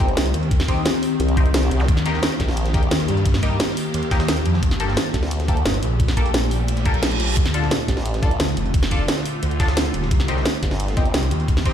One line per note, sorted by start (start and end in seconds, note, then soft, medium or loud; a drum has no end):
0.00 0.16 G1 loud
0.00 4.59 D#3 medium
0.00 1.86 C4 medium
0.00 7.33 G4 medium
0.08 closed hi-hat soft
0.17 0.33 C2 loud
0.17 snare loud
0.17 closed hi-hat medium
0.26 snare soft
0.26 closed hi-hat soft
0.34 0.84 D#2 medium
0.34 closed hi-hat medium
0.43 closed hi-hat soft
0.51 kick loud
0.51 closed hi-hat medium
0.60 snare soft
0.60 snare medium
0.68 0.81 C4 loud
0.68 0.81 D#4 medium
0.68 0.81 G4 loud
0.68 kick medium
0.68 closed hi-hat medium
0.68 open hi-hat medium
0.86 snare loud
0.86 closed hi-hat medium
0.94 snare medium
1.03 closed hi-hat medium
1.03 open hi-hat medium
1.20 1.70 C2 medium
1.20 closed hi-hat medium
1.29 closed hi-hat soft
1.37 1.45 C4 medium
1.37 1.45 D#4 medium
1.37 1.45 G4 medium
1.37 kick loud
1.37 closed hi-hat medium
1.46 closed hi-hat soft
1.54 snare loud
1.54 closed hi-hat medium
1.63 closed hi-hat soft
1.71 1.87 C2 loud
1.71 closed hi-hat medium
1.80 snare soft
1.80 zap medium
1.88 2.21 D#2 medium
1.88 4.60 A#3 medium
1.88 kick loud
1.88 closed hi-hat medium
1.97 snare medium
2.06 2.19 A#3 medium
2.06 2.19 D#4 medium
2.06 2.19 G4 loud
2.06 closed hi-hat medium
2.14 snare soft
2.23 snare loud
2.23 closed hi-hat medium
2.40 2.90 A#1 loud
2.40 kick medium
2.40 snare soft
2.40 closed hi-hat medium
2.49 snare soft
2.57 closed hi-hat medium
2.66 snare soft
2.66 closed hi-hat soft
2.74 2.82 A#3 medium
2.74 2.82 D#4 medium
2.74 2.82 G4 medium
2.74 kick loud
2.74 closed hi-hat medium
2.83 closed hi-hat soft
2.91 3.07 D#2 loud
2.91 snare loud
2.91 closed hi-hat medium
3.00 snare soft
3.00 closed hi-hat soft
3.08 3.58 G2 loud
3.08 closed hi-hat medium
3.17 closed hi-hat soft
3.26 kick loud
3.26 closed hi-hat medium
3.34 snare soft
3.34 snare medium
3.43 3.56 A#3 medium
3.43 3.56 D#4 medium
3.43 3.56 G4 loud
3.43 kick medium
3.43 closed hi-hat medium
3.43 open hi-hat medium
3.60 snare loud
3.60 closed hi-hat medium
3.69 snare medium
3.77 closed hi-hat medium
3.77 open hi-hat medium
3.94 4.27 D#2 medium
3.94 closed hi-hat medium
4.03 closed hi-hat soft
4.11 4.19 A#3 medium
4.11 4.19 D#4 medium
4.11 4.19 G4 medium
4.11 kick loud
4.11 snare loud
4.11 closed hi-hat medium
4.20 snare loud
4.20 closed hi-hat soft
4.20 closed hi-hat medium
4.28 4.44 D#2 loud
4.28 snare loud
4.28 closed hi-hat medium
4.37 closed hi-hat soft
4.46 4.61 F2 loud
4.46 closed hi-hat medium
4.54 snare soft
4.63 4.96 G1 loud
4.63 7.34 A#2 medium
4.63 7.34 A3 medium
4.63 kick loud
4.63 closed hi-hat medium
4.71 snare medium
4.80 4.93 A#3 loud
4.80 4.93 G4 medium
4.80 4.93 A4 loud
4.80 closed hi-hat medium
4.88 snare soft
4.97 snare loud
4.97 closed hi-hat medium
4.97 closed hi-hat loud
5.14 5.64 D2 medium
5.14 kick medium
5.14 snare soft
5.14 closed hi-hat medium
5.23 snare soft
5.31 closed hi-hat loud
5.31 closed hi-hat medium
5.40 snare soft
5.40 closed hi-hat soft
5.48 5.57 A#3 medium
5.48 5.57 G4 medium
5.48 5.57 A4 medium
5.48 kick loud
5.48 closed hi-hat medium
5.57 closed hi-hat soft
5.66 5.81 G1 loud
5.66 snare loud
5.66 closed hi-hat medium
5.74 snare soft
5.74 closed hi-hat soft
5.83 6.33 A#1 loud
5.83 closed hi-hat medium
6.00 kick loud
6.00 closed hi-hat loud
6.00 closed hi-hat medium
6.08 snare soft
6.08 snare medium
6.08 closed hi-hat medium
6.08 closed hi-hat soft
6.17 6.30 A#3 medium
6.17 6.30 G4 medium
6.17 6.30 A4 loud
6.17 kick medium
6.17 closed hi-hat medium
6.26 closed hi-hat medium
6.34 7.36 A#1 loud
6.34 snare loud
6.34 closed hi-hat medium
6.34 closed hi-hat loud
6.51 closed hi-hat medium
6.51 open hi-hat medium
6.68 closed hi-hat medium
6.68 closed hi-hat loud
6.68 reverse cymbal medium
6.77 snare soft
6.77 closed hi-hat soft
6.86 6.94 A#3 medium
6.86 6.94 G4 medium
6.86 6.94 A4 medium
6.86 kick loud
6.86 closed hi-hat medium
6.94 closed hi-hat soft
7.03 snare loud
7.03 closed hi-hat medium
7.03 closed hi-hat loud
7.11 closed hi-hat soft
7.20 closed hi-hat medium
7.37 7.70 D2 loud
7.37 10.08 D3 medium
7.37 10.08 A3 medium
7.37 10.08 F4 medium
7.37 kick loud
7.37 closed hi-hat medium
7.37 closed hi-hat loud
7.46 snare medium
7.54 7.67 D4 loud
7.54 7.67 F4 medium
7.54 7.67 A4 loud
7.54 closed hi-hat medium
7.63 snare soft
7.71 snare loud
7.71 closed hi-hat medium
7.71 closed hi-hat loud
7.88 8.38 A1 medium
7.88 kick medium
7.88 snare soft
7.88 closed hi-hat medium
7.97 snare soft
8.06 closed hi-hat medium
8.06 closed hi-hat loud
8.14 snare soft
8.14 closed hi-hat soft
8.23 8.31 D4 medium
8.23 8.31 F4 medium
8.23 8.31 A4 medium
8.23 kick loud
8.23 closed hi-hat medium
8.31 closed hi-hat soft
8.40 8.56 D2 loud
8.40 snare loud
8.40 closed hi-hat medium
8.40 closed hi-hat loud
8.48 snare soft
8.48 closed hi-hat soft
8.57 9.07 F1 loud
8.57 closed hi-hat medium
8.66 closed hi-hat soft
8.74 kick loud
8.74 closed hi-hat medium
8.83 snare soft
8.83 snare medium
8.91 9.04 D4 loud
8.91 9.04 F4 medium
8.91 9.04 A4 loud
8.91 kick medium
8.91 closed hi-hat medium
8.91 open hi-hat medium
9.08 snare loud
9.08 closed hi-hat medium
9.08 closed hi-hat loud
9.17 snare medium
9.26 closed hi-hat medium
9.26 open hi-hat medium
9.43 9.76 D2 medium
9.43 closed hi-hat medium
9.43 closed hi-hat loud
9.51 closed hi-hat soft
9.60 9.68 D4 medium
9.60 9.68 F4 medium
9.60 9.68 A4 medium
9.60 kick loud
9.60 snare loud
9.60 closed hi-hat medium
9.68 snare loud
9.68 closed hi-hat soft
9.68 closed hi-hat medium
9.77 9.93 D2 loud
9.77 snare loud
9.77 closed hi-hat medium
9.86 closed hi-hat soft
9.94 10.10 D#1 loud
9.94 closed hi-hat medium
10.03 snare soft
10.11 10.44 C2 medium
10.11 11.73 D#3 medium
10.11 11.73 C4 medium
10.11 11.73 G4 medium
10.11 kick loud
10.11 closed hi-hat medium
10.20 snare medium
10.28 10.41 C4 loud
10.28 10.41 D#4 medium
10.28 10.41 G4 loud
10.28 closed hi-hat medium
10.37 snare soft
10.46 snare loud
10.46 closed hi-hat medium
10.63 11.13 G1 medium
10.63 kick medium
10.63 snare soft
10.63 closed hi-hat medium
10.71 snare soft
10.80 closed hi-hat medium
10.88 snare soft
10.88 closed hi-hat soft
10.97 11.05 C4 medium
10.97 11.05 D#4 medium
10.97 11.05 G4 medium
10.97 kick loud
10.97 closed hi-hat medium
11.06 closed hi-hat soft
11.14 11.30 C2 loud
11.14 snare loud
11.14 closed hi-hat medium
11.23 snare soft
11.23 closed hi-hat soft
11.31 11.73 D#2 loud
11.31 closed hi-hat medium
11.40 closed hi-hat soft
11.48 kick loud
11.48 closed hi-hat medium
11.57 snare soft
11.57 snare medium
11.65 11.73 C4 medium
11.65 11.73 D#4 medium
11.65 11.73 G4 loud
11.65 kick medium
11.65 closed hi-hat medium
11.65 open hi-hat medium